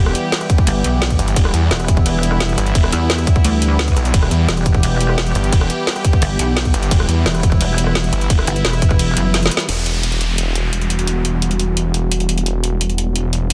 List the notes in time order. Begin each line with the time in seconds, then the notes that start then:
Already playing: E1 E3 G3 B3 G4
0.06 cross-stick
0.15 closed hi-hat
0.32 snare, closed hi-hat, ride
0.41 cross-stick, closed hi-hat
0.50 kick, closed hi-hat
0.58 kick
0.67 G1, closed hi-hat, ride
0.84 B1, closed hi-hat
1.02 snare, closed hi-hat, ride
1.10 kick, closed hi-hat
1.19 G1, closed hi-hat
1.28 closed hi-hat
1.36 E1 E4, kick, closed hi-hat, ride
1.45 cross-stick
1.54 E2, closed hi-hat
1.71 E1, snare, closed hi-hat, ride
1.80 cross-stick, closed hi-hat
1.88 kick, closed hi-hat
1.97 kick
2.06 closed hi-hat, ride
2.23 closed hi-hat
2.32 cross-stick
2.40 snare, closed hi-hat, ride
2.49 closed hi-hat
2.58 G1, closed hi-hat
2.66 closed hi-hat
2.75 E1, kick, closed hi-hat, ride
2.84 cross-stick
2.92 E2, closed hi-hat
3.10 snare, closed hi-hat, ride
3.18 cross-stick, closed hi-hat
3.27 kick, closed hi-hat
3.36 kick
3.44 D2, closed hi-hat, ride
3.62 closed hi-hat
3.79 snare, closed hi-hat, ride
3.88 kick, closed hi-hat
3.96 B1, closed hi-hat
4.05 closed hi-hat
4.14 E1 G4, kick, closed hi-hat, ride
4.23 cross-stick
4.31 E2, closed hi-hat
4.49 E1, snare, closed hi-hat, ride
4.57 cross-stick, closed hi-hat
4.66 kick, closed hi-hat
4.75 kick
4.83 closed hi-hat, ride
5.01 closed hi-hat
5.09 cross-stick
5.18 snare, closed hi-hat, ride
5.27 closed hi-hat
5.35 G1, closed hi-hat
5.44 closed hi-hat
5.53 E1, kick, closed hi-hat, ride
5.61 cross-stick
5.70 closed hi-hat
5.87 snare, closed hi-hat, ride
5.96 cross-stick, closed hi-hat
6.05 kick, closed hi-hat
6.13 kick
6.22 G1, closed hi-hat, ride
6.39 B1, closed hi-hat
6.57 snare, closed hi-hat, ride
6.65 kick, closed hi-hat
6.74 G1, closed hi-hat
6.83 closed hi-hat
6.91 E1 E4, kick, closed hi-hat, ride
7.00 cross-stick
7.09 E2, closed hi-hat
7.26 E1, snare, closed hi-hat, ride
7.35 cross-stick, closed hi-hat
7.43 kick, closed hi-hat
7.52 kick
7.61 closed hi-hat, ride
7.78 closed hi-hat
7.87 cross-stick
7.95 snare, closed hi-hat, ride
8.04 closed hi-hat
8.13 G1, closed hi-hat
8.21 closed hi-hat
8.30 E1, kick, closed hi-hat, ride
8.39 cross-stick
8.47 G1, closed hi-hat
8.56 closed hi-hat
8.65 E1, snare, closed hi-hat, ride
8.73 cross-stick, closed hi-hat
8.82 kick, closed hi-hat
8.91 kick
8.99 closed hi-hat, ride
9.17 F#1, closed hi-hat
9.34 snare, closed hi-hat, ride
9.43 snare, closed hi-hat
9.51 closed hi-hat
9.57 snare, closed hi-hat
9.69 E1 E3 G3 B3 F#4, closed hi-hat, downlifter
9.86 closed hi-hat
10.03 closed hi-hat
10.12 closed hi-hat
10.21 closed hi-hat
10.38 closed hi-hat
10.55 closed hi-hat
10.73 closed hi-hat
10.81 closed hi-hat
10.90 closed hi-hat
10.99 closed hi-hat
11.07 closed hi-hat
11.25 closed hi-hat
11.42 closed hi-hat
11.51 closed hi-hat
11.60 closed hi-hat
11.77 closed hi-hat
11.94 closed hi-hat
12.12 closed hi-hat
12.20 closed hi-hat
12.29 closed hi-hat
12.38 closed hi-hat
12.46 closed hi-hat
12.64 closed hi-hat
12.81 closed hi-hat
12.90 closed hi-hat
12.98 closed hi-hat
13.16 closed hi-hat
13.33 closed hi-hat